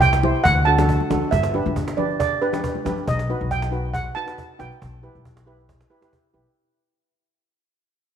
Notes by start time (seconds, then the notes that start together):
Already playing: C2
0.01 G5, cajon bass
0.13 cajon slap
0.23 E4 G4 C5, cajon slap, low conga
0.35 cajon slap
0.44 D2 F#5, cajon bass
0.65 D4 F#4 A4 A5, cajon slap
0.78 D4 F#4 A4, cajon slap, high conga, low conga
0.89 cajon bass
1.00 high conga
1.10 D2 D4 F#4 A4, cajon slap, low conga
1.22 cajon slap
1.31 G1 E5, cajon bass
1.43 cajon slap
1.54 D4 G4 B4, cajon slap, high conga
1.66 G1, cajon slap, high conga
1.76 cajon bass
1.88 cajon slap
1.97 D4 G4 B4 D5, cajon slap, low conga
2.10 cajon slap
2.20 D5, cajon bass
2.42 D4 G4 B4, cajon slap
2.52 D4 G4 B4, cajon slap, high conga, low conga
2.64 cajon bass
2.75 high conga
2.85 F#2 D4 G4 B4, cajon slap, low conga
2.97 cajon slap
3.08 B1 D#5, cajon bass
3.19 cajon slap
3.29 D#4 F#4 B4, cajon slap
3.40 B1, cajon slap
3.51 G5, cajon bass
3.62 cajon slap
3.71 D#4 F#4 B4, cajon slap
3.84 cajon slap
3.94 F#5, cajon bass
4.15 D#4 F#4 B4 A5, cajon slap
4.26 D#4 F#4 B4, cajon slap
4.38 cajon bass
4.59 B1 D#4 F#4 B4 G5, cajon slap
4.71 cajon slap
4.82 B1, cajon bass
5.03 E4 G4 B4, cajon slap
5.15 B1, cajon slap
5.25 cajon bass
5.37 cajon slap
5.46 E4 G4 B4, cajon slap
5.59 cajon slap
5.69 cajon bass
5.81 cajon slap
5.90 E4 G4 B4, cajon slap
6.01 E4 G4 B4, cajon slap
6.13 cajon bass
6.34 B1 E4 G4 B4
6.46 cajon slap